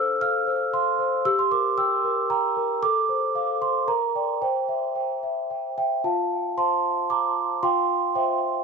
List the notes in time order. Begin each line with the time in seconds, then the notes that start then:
Already playing: A4 C5 E6 F6
0.21 F5 F6
0.47 C5
0.73 F5 C6
0.99 C5
1.25 G4 E6
1.39 C6
1.51 A#4 D6
1.78 G5 E6
2.04 A#4
2.30 G5 A#5
2.57 A#4
2.83 A4 D6
3.09 C5
3.35 F5
3.62 C5 C6
3.88 A#4 A#5
4.15 D5 G5
4.42 C5 G5
4.69 E5
4.95 G5
5.23 E5
5.50 G5
5.78 E5 G5
6.04 F4 F5 A5
6.58 C5 F5 A5 C6
7.10 A#5 D6
7.63 F4 F5 G5 C6
8.15 C5 E5 G5